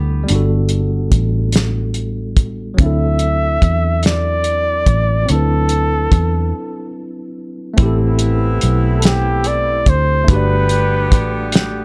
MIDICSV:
0, 0, Header, 1, 7, 480
1, 0, Start_track
1, 0, Tempo, 833333
1, 164, Time_signature, 6, 3, 24, 8
1, 6824, End_track
2, 0, Start_track
2, 0, Title_t, "Flugelhorn"
2, 0, Program_c, 0, 56
2, 1619, Note_on_c, 0, 76, 106
2, 2308, Note_off_c, 0, 76, 0
2, 2337, Note_on_c, 0, 74, 113
2, 3059, Note_on_c, 0, 69, 94
2, 3068, Note_off_c, 0, 74, 0
2, 4011, Note_off_c, 0, 69, 0
2, 5174, Note_on_c, 0, 69, 64
2, 5213, Note_on_c, 0, 67, 93
2, 5221, Note_off_c, 0, 69, 0
2, 5455, Note_on_c, 0, 74, 110
2, 5464, Note_off_c, 0, 67, 0
2, 5698, Note_on_c, 0, 72, 102
2, 5707, Note_off_c, 0, 74, 0
2, 5937, Note_on_c, 0, 71, 101
2, 5946, Note_off_c, 0, 72, 0
2, 6650, Note_off_c, 0, 71, 0
2, 6824, End_track
3, 0, Start_track
3, 0, Title_t, "Clean electric guitar"
3, 0, Program_c, 1, 27
3, 0, Note_on_c, 1, 59, 64
3, 0, Note_on_c, 1, 67, 74
3, 257, Note_off_c, 1, 67, 0
3, 259, Note_off_c, 1, 59, 0
3, 6824, End_track
4, 0, Start_track
4, 0, Title_t, "Tine electric piano"
4, 0, Program_c, 2, 4
4, 0, Control_c, 2, 64, 127
4, 0, Note_on_c, 2, 55, 68
4, 0, Note_on_c, 2, 59, 62
4, 0, Note_on_c, 2, 62, 65
4, 0, Note_on_c, 2, 69, 78
4, 0, Note_on_c, 2, 78, 67
4, 125, Note_off_c, 2, 55, 0
4, 133, Note_off_c, 2, 59, 0
4, 135, Note_on_c, 2, 55, 76
4, 141, Note_off_c, 2, 62, 0
4, 150, Note_off_c, 2, 78, 0
4, 153, Note_on_c, 2, 59, 65
4, 159, Note_off_c, 2, 69, 0
4, 169, Note_on_c, 2, 62, 67
4, 187, Note_on_c, 2, 66, 67
4, 204, Note_on_c, 2, 69, 75
4, 1566, Note_off_c, 2, 55, 0
4, 1575, Note_off_c, 2, 59, 0
4, 1579, Note_on_c, 2, 54, 68
4, 1583, Note_off_c, 2, 62, 0
4, 1592, Note_off_c, 2, 66, 0
4, 1597, Note_on_c, 2, 60, 58
4, 1601, Note_off_c, 2, 69, 0
4, 1610, Control_c, 2, 64, 0
4, 1615, Note_on_c, 2, 62, 51
4, 1631, Note_on_c, 2, 64, 61
4, 1647, Note_on_c, 2, 69, 66
4, 1698, Control_c, 2, 64, 127
4, 3006, Note_off_c, 2, 54, 0
4, 3013, Note_on_c, 2, 54, 59
4, 3017, Note_off_c, 2, 60, 0
4, 3026, Note_off_c, 2, 62, 0
4, 3029, Note_on_c, 2, 60, 57
4, 3034, Note_off_c, 2, 64, 0
4, 3042, Note_off_c, 2, 69, 0
4, 3047, Note_on_c, 2, 62, 55
4, 3064, Note_on_c, 2, 64, 58
4, 3083, Note_on_c, 2, 71, 63
4, 4445, Note_off_c, 2, 54, 0
4, 4453, Note_off_c, 2, 60, 0
4, 4456, Note_on_c, 2, 57, 78
4, 4462, Note_off_c, 2, 62, 0
4, 4471, Note_off_c, 2, 64, 0
4, 4474, Note_on_c, 2, 60, 73
4, 4480, Note_off_c, 2, 71, 0
4, 4489, Note_on_c, 2, 64, 78
4, 4491, Control_c, 2, 64, 0
4, 4507, Note_on_c, 2, 67, 76
4, 4526, Note_on_c, 2, 69, 94
4, 4598, Control_c, 2, 64, 127
4, 5887, Note_off_c, 2, 57, 0
4, 5896, Note_off_c, 2, 60, 0
4, 5898, Note_on_c, 2, 57, 77
4, 5903, Note_off_c, 2, 64, 0
4, 5912, Note_off_c, 2, 67, 0
4, 5914, Note_on_c, 2, 62, 64
4, 5922, Note_off_c, 2, 69, 0
4, 5931, Control_c, 2, 64, 0
4, 5933, Note_on_c, 2, 66, 69
4, 5949, Note_on_c, 2, 67, 64
4, 5968, Note_on_c, 2, 74, 76
4, 6030, Control_c, 2, 64, 127
4, 6824, Note_off_c, 2, 57, 0
4, 6824, Note_off_c, 2, 62, 0
4, 6824, Note_off_c, 2, 66, 0
4, 6824, Note_off_c, 2, 67, 0
4, 6824, Note_off_c, 2, 74, 0
4, 6824, End_track
5, 0, Start_track
5, 0, Title_t, "Horn section"
5, 0, Program_c, 3, 61
5, 4477, Note_on_c, 3, 60, 58
5, 4479, Note_on_c, 3, 52, 64
5, 4479, Note_on_c, 3, 59, 72
5, 4479, Note_on_c, 3, 64, 70
5, 5657, Note_off_c, 3, 60, 0
5, 5658, Note_off_c, 3, 52, 0
5, 5658, Note_off_c, 3, 59, 0
5, 5658, Note_off_c, 3, 64, 0
5, 5922, Note_on_c, 3, 55, 71
5, 5922, Note_on_c, 3, 67, 78
5, 5923, Note_on_c, 3, 50, 69
5, 5923, Note_on_c, 3, 59, 71
5, 6824, Note_off_c, 3, 50, 0
5, 6824, Note_off_c, 3, 55, 0
5, 6824, Note_off_c, 3, 59, 0
5, 6824, Note_off_c, 3, 67, 0
5, 6824, End_track
6, 0, Start_track
6, 0, Title_t, "Fingered electric bass"
6, 0, Program_c, 4, 33
6, 0, Note_on_c, 4, 38, 72
6, 141, Note_off_c, 4, 38, 0
6, 175, Note_on_c, 4, 31, 102
6, 626, Note_off_c, 4, 31, 0
6, 648, Note_on_c, 4, 33, 80
6, 1583, Note_off_c, 4, 33, 0
6, 1608, Note_on_c, 4, 38, 102
6, 2063, Note_off_c, 4, 38, 0
6, 2088, Note_on_c, 4, 40, 90
6, 2783, Note_off_c, 4, 40, 0
6, 2806, Note_on_c, 4, 33, 88
6, 3022, Note_off_c, 4, 33, 0
6, 3052, Note_on_c, 4, 38, 103
6, 3505, Note_off_c, 4, 38, 0
6, 3527, Note_on_c, 4, 40, 80
6, 3753, Note_off_c, 4, 40, 0
6, 4485, Note_on_c, 4, 33, 102
6, 4941, Note_off_c, 4, 33, 0
6, 4973, Note_on_c, 4, 35, 96
6, 5665, Note_off_c, 4, 35, 0
6, 5687, Note_on_c, 4, 38, 90
6, 5902, Note_off_c, 4, 38, 0
6, 5927, Note_on_c, 4, 31, 110
6, 6407, Note_off_c, 4, 31, 0
6, 6407, Note_on_c, 4, 33, 97
6, 6824, Note_off_c, 4, 33, 0
6, 6824, End_track
7, 0, Start_track
7, 0, Title_t, "Drums"
7, 164, Note_on_c, 9, 42, 76
7, 222, Note_off_c, 9, 42, 0
7, 396, Note_on_c, 9, 42, 51
7, 453, Note_off_c, 9, 42, 0
7, 643, Note_on_c, 9, 36, 81
7, 643, Note_on_c, 9, 42, 70
7, 701, Note_off_c, 9, 36, 0
7, 701, Note_off_c, 9, 42, 0
7, 878, Note_on_c, 9, 42, 66
7, 896, Note_on_c, 9, 38, 104
7, 936, Note_off_c, 9, 42, 0
7, 954, Note_off_c, 9, 38, 0
7, 1118, Note_on_c, 9, 42, 46
7, 1176, Note_off_c, 9, 42, 0
7, 1363, Note_on_c, 9, 36, 81
7, 1363, Note_on_c, 9, 42, 65
7, 1420, Note_off_c, 9, 36, 0
7, 1420, Note_off_c, 9, 42, 0
7, 1604, Note_on_c, 9, 36, 110
7, 1604, Note_on_c, 9, 42, 67
7, 1661, Note_off_c, 9, 42, 0
7, 1662, Note_off_c, 9, 36, 0
7, 1838, Note_on_c, 9, 42, 53
7, 1895, Note_off_c, 9, 42, 0
7, 2085, Note_on_c, 9, 36, 76
7, 2087, Note_on_c, 9, 42, 73
7, 2142, Note_off_c, 9, 36, 0
7, 2144, Note_off_c, 9, 42, 0
7, 2320, Note_on_c, 9, 42, 72
7, 2338, Note_on_c, 9, 38, 105
7, 2377, Note_off_c, 9, 42, 0
7, 2396, Note_off_c, 9, 38, 0
7, 2557, Note_on_c, 9, 42, 52
7, 2615, Note_off_c, 9, 42, 0
7, 2802, Note_on_c, 9, 36, 81
7, 2802, Note_on_c, 9, 42, 61
7, 2860, Note_off_c, 9, 36, 0
7, 2860, Note_off_c, 9, 42, 0
7, 3045, Note_on_c, 9, 42, 71
7, 3102, Note_off_c, 9, 42, 0
7, 3277, Note_on_c, 9, 42, 52
7, 3335, Note_off_c, 9, 42, 0
7, 3523, Note_on_c, 9, 36, 91
7, 3525, Note_on_c, 9, 42, 74
7, 3581, Note_off_c, 9, 36, 0
7, 3583, Note_off_c, 9, 42, 0
7, 4479, Note_on_c, 9, 42, 89
7, 4481, Note_on_c, 9, 36, 127
7, 4537, Note_off_c, 9, 42, 0
7, 4539, Note_off_c, 9, 36, 0
7, 4716, Note_on_c, 9, 42, 59
7, 4774, Note_off_c, 9, 42, 0
7, 4961, Note_on_c, 9, 42, 78
7, 5018, Note_off_c, 9, 42, 0
7, 5197, Note_on_c, 9, 42, 66
7, 5215, Note_on_c, 9, 38, 116
7, 5254, Note_off_c, 9, 42, 0
7, 5273, Note_off_c, 9, 38, 0
7, 5438, Note_on_c, 9, 42, 59
7, 5496, Note_off_c, 9, 42, 0
7, 5681, Note_on_c, 9, 42, 63
7, 5682, Note_on_c, 9, 36, 85
7, 5739, Note_off_c, 9, 36, 0
7, 5739, Note_off_c, 9, 42, 0
7, 5923, Note_on_c, 9, 36, 124
7, 5924, Note_on_c, 9, 42, 91
7, 5981, Note_off_c, 9, 36, 0
7, 5981, Note_off_c, 9, 42, 0
7, 6159, Note_on_c, 9, 42, 62
7, 6216, Note_off_c, 9, 42, 0
7, 6404, Note_on_c, 9, 36, 94
7, 6404, Note_on_c, 9, 42, 83
7, 6461, Note_off_c, 9, 42, 0
7, 6462, Note_off_c, 9, 36, 0
7, 6637, Note_on_c, 9, 42, 74
7, 6656, Note_on_c, 9, 38, 115
7, 6695, Note_off_c, 9, 42, 0
7, 6713, Note_off_c, 9, 38, 0
7, 6824, End_track
0, 0, End_of_file